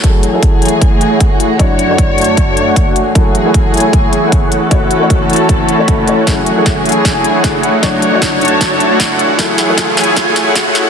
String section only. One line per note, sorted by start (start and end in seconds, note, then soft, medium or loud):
0.04 1.58 E3 medium
0.04 1.58 A3 medium
0.04 2.93 F#4 medium
0.04 1.58 G#4 medium
1.59 2.95 F#2 medium
1.59 2.94 D3 medium
1.59 4.49 A3 medium
1.59 2.94 C#5 medium
2.96 7.79 E3 medium
2.96 4.50 F#4 medium
2.96 4.50 G#4 medium
4.52 6.25 C#4 medium
4.52 10.90 F#4 medium
4.52 6.25 A4 medium
6.27 9.16 A3 medium
6.27 7.82 G#4 medium
7.83 9.18 F#2 medium
7.83 9.18 D3 medium
7.83 9.18 C#5 medium
9.19 10.90 E3 medium
9.19 10.74 A3 medium
9.19 10.74 G#4 loud
10.75 10.90 C#4 medium
10.75 10.90 A4 medium